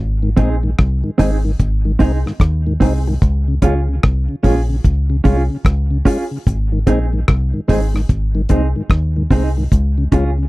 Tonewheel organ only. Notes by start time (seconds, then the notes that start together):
0.23 G#2 D#3
0.37 G#3 C4 D#4
0.63 G#2 D#3
1.04 G#2 D#3
1.18 G#3 C4 D#4
1.45 G#2 D#3
1.85 G#2 D#3
1.99 G#3 C4 D#4
2.26 G#2 D#3
2.66 G#2 D#3
2.81 G#3 C4 D#4
3.07 G#2 D#3
3.48 C#3
3.62 G#3 C#4 F4
3.89 C#3
4.29 C#3
4.43 G#3 C#4 F4
4.69 C#3
5.10 C#3
5.24 G#3 C#4 F4
5.50 C#3
5.91 C#3
6.05 G#3 C#4 F4
6.31 C#3
6.72 G#2 D#3
6.86 G#3 C4 D#4
7.13 G#2 D#3
7.54 G#2 D#3
7.68 G#3 C4 D#4
7.94 G#2 D#3
8.35 G#2 D#3
8.49 G#3 C4 D#4
8.76 G#2 D#3
9.16 G#2 D#3
9.31 G#3 C4 D#4
9.57 G#2 D#3
9.98 C#3
10.12 G#3 C#4 F4
10.38 C#3